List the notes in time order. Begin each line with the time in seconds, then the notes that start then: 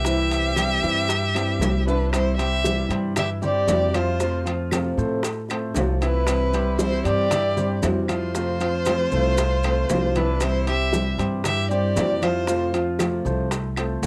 Already playing: C2 G4 E5
0.05 C3 E3 G3 C4 E4, high bongo, high conga, maracas
0.31 high conga, high timbale, maracas
0.56 G3 G4, high bongo, high conga, high timbale, low timbale, claves, maracas
0.83 G2 E3 G3 C4 E4, high bongo, high conga, maracas
1.09 muted nylon-string guitar stroke, high bongo, high conga, high timbale, maracas
1.35 E3 G3 C4 E4 G4, high bongo, high conga, high timbale, claves, maracas
1.59 C2 E3 G3 C4 E4, high bongo, low bongo, high conga, low timbale, maracas
1.86 D4 E4 B4 E5, high bongo, high timbale, maracas
2.11 C3 E3 G3 C4 E4 C5, high bongo, high conga, high timbale, claves, maracas
2.37 G3 C4 E4 G4 C5 E5, high conga, high timbale, maracas
2.64 C3 E3 G3 C4 E4, high bongo, high conga, low timbale, maracas
2.89 G2 G3 G4 C5, high bongo, high conga, high timbale, maracas
3.16 E3 E4 G4 E5, muted nylon-string guitar stroke, high bongo, high conga, low conga, high timbale, claves, maracas
3.42 G3 C4 E4 G4 C5 D5, high bongo, high conga, low conga, maracas
3.68 F2 C3 E3 G3 C4 E4, high bongo, low bongo, high conga, high timbale, low timbale, maracas
3.94 F3 G3 C4 E4 F4 C5 F5, high bongo, high conga, high timbale, claves, maracas
4.19 C3 F3 A3 C4 F4 F5, high bongo, high conga, maracas
4.45 F3 A3 C4 F4 F5, high conga, high timbale, maracas
4.71 C3 F3 A3 C4 F4, high bongo, high conga, high timbale, low timbale, claves, maracas
4.97 A2 A3 A4 C5, high bongo, high conga, maracas
5.23 muted nylon-string guitar stroke, high bongo, high conga, high timbale, maracas
5.49 A3 C4 F4 A4 C5, high bongo, high conga, high timbale, claves, maracas
5.74 C2 C3 F3 A3 C4 F4, high bongo, low bongo, high conga, low timbale, maracas
6.00 E3 A3 C4 E4 F4 B4 E5, high bongo, high timbale, maracas
6.27 C3 E3 G3 C4 E4, high bongo, high conga, high timbale, claves, maracas
6.53 G3 C4 E4 G4 C5, high conga, high timbale, maracas
6.79 C3 E3 G3 C4 E4 C5, high bongo, high conga, low timbale, maracas
7.05 G2 G3 G4 C5 D5, high bongo, high conga, high timbale, maracas
7.31 E3 E4 E5, muted nylon-string guitar stroke, high bongo, high conga, low conga, high timbale, claves, maracas
7.56 G3 C4 E4 G4 C5, high bongo, high conga, low conga, maracas
7.82 F2 C3 E3 G3 C4 E4, high bongo, low bongo, high conga, high timbale, low timbale, maracas
8.08 F3 G3 C4 E4 F4 C5 F5, high bongo, high conga, high timbale, claves, maracas
8.34 C3 F3 A3 C4 F4 F5, high bongo, high conga, maracas
8.60 F3 A3 C4 F4 F5, high conga, high timbale, maracas
8.85 C3 F3 A3 C4, high bongo, high conga, high timbale, low timbale, claves, maracas
8.89 F4
9.12 C2 A3 A4 C5, high bongo, high conga, maracas
9.38 high bongo, high conga, high timbale, maracas
9.63 A3 C4 F4 A4 C5, high bongo, high conga, high timbale, claves, maracas
9.89 C2 C3 F3 A3 C4 F4, high bongo, low bongo, high conga, low timbale, maracas
10.15 E3 A3 C4 D4 E4 F4 B4 E5, high bongo, high conga, high timbale, maracas
10.40 C3 E3 G3 C4 E4 C5, high bongo, high conga, high timbale, claves, maracas
10.67 G3 C4 E4 G4 C5 E5, high conga, high timbale, maracas
10.93 C3 E3 G3 C4 E4, high bongo, high conga, low timbale, maracas
11.18 G2 G3 G4 C5, high bongo, high conga, high timbale, maracas
11.44 E3 E4 G4 E5, muted nylon-string guitar stroke, high bongo, high conga, low conga, high timbale, claves, maracas
11.70 G3 C4 E4 G4 C5 D5, high bongo, high conga, maracas
11.96 F2 C3 E3 G3 C4 E4, high bongo, low bongo, high conga, high timbale, low timbale, maracas
12.22 F3 G3 C4 E4 F4 C5 F5, high bongo, high conga, high timbale, claves, maracas
12.47 C3 F3 A3 C4 F4 F5, high bongo, high conga, maracas
12.74 F3 A3 C4 F4 F5, high conga, high timbale, maracas
12.99 C3 F3 A3 C4 F4, high bongo, high conga, high timbale, low timbale, claves, maracas
13.25 C2 A3 A4 C5, high bongo, high conga, maracas
13.51 muted nylon-string guitar stroke, high bongo, high conga, high timbale, maracas
13.76 A3 C4 F4 A4 C5, high bongo, high conga, high timbale, claves, maracas
14.02 C2 C3 F3 A3, high conga, low timbale, maracas